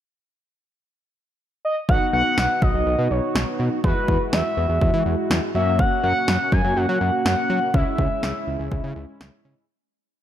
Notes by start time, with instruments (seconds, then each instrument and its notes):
1.65 analog synth lead D#5
1.89 analog synth bass B1, analog polysynth B3 D#4 F#4, analog synth lead F#5, kick
2.13 analog synth bass B1, analog synth lead F#5
2.38 analog synth bass B1, snare
2.62 analog synth bass B1, analog synth lead D#5, kick
2.74 analog synth bass B1
2.87 analog synth bass B1
2.99 analog synth bass B2
3.11 analog synth bass B1, analog synth lead C#5
3.35 analog synth bass B1, snare
3.60 analog synth bass B2
3.84 analog synth bass E2, analog polysynth G#3 E4 F#4, analog synth lead B4, kick
4.08 analog synth bass E2, analog synth lead B4, kick
4.33 analog synth bass E2, analog synth lead E5, snare
4.57 analog synth bass E2
4.69 analog synth bass E2
4.81 analog synth bass E2, kick
4.94 analog synth bass E3
5.06 analog synth bass E2
5.30 analog synth bass E2, snare
5.55 analog synth bass F#2, analog polysynth A#3 C#4 F#4, analog synth lead E5
5.79 analog synth lead F#5, kick
6.03 analog synth bass F#2, analog synth lead F#5
6.28 analog synth bass F#2, snare
6.52 analog synth bass F#2, analog synth lead G#5, kick
6.65 analog synth bass F#2
6.77 analog synth bass F#2, analog synth lead F#5
6.89 analog synth bass F#3
7.01 analog synth bass F#2
7.25 analog synth bass F#2, analog synth lead F#5, snare
7.50 analog synth bass F#3
7.74 analog synth bass C#2, analog polysynth G#3 C#4 E4, analog synth lead E5, kick
7.98 analog synth bass C#2, kick
8.23 analog synth bass C#2, snare
8.47 analog synth bass C#2
8.60 analog synth bass C#2
8.72 analog synth bass C#2, kick
8.84 analog synth bass C#3
8.96 analog synth bass C#2
9.20 analog synth bass C#2, snare
9.45 analog synth bass C#3